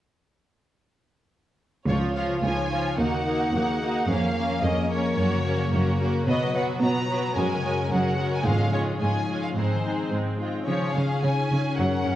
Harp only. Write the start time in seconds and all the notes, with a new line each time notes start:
1.90 C#3
2.08 G#3
2.26 F4
2.44 D#4
2.63 F4
2.81 F5
2.99 D#3
3.17 D#4
3.36 A#4
3.54 G#4
3.72 A#4
3.90 D#5
4.08 F2
4.27 F3
4.45 A#4
4.63 G#4
4.82 A#4
5.00 C#5
5.18 F#2
5.35 C#3
5.54 A#4
5.72 G#4
5.91 A#4
6.10 C#5
6.28 B2
6.46 F#3
6.64 F#4
6.82 F4
7.00 F#4
7.18 B4
7.37 F#2
7.56 C#3
7.91 G#4
8.09 F#4
8.27 C#5
8.46 G#2
8.64 F3
8.83 F4
9.00 D#4
9.19 F4
9.37 C#5
9.56 G#2
9.74 D#3
9.93 D#4
10.48 D#5
10.66 C#3
10.84 C#4
11.03 F4
11.21 D#4
11.40 F4
11.59 G#4
11.77 F#2
11.96 C#3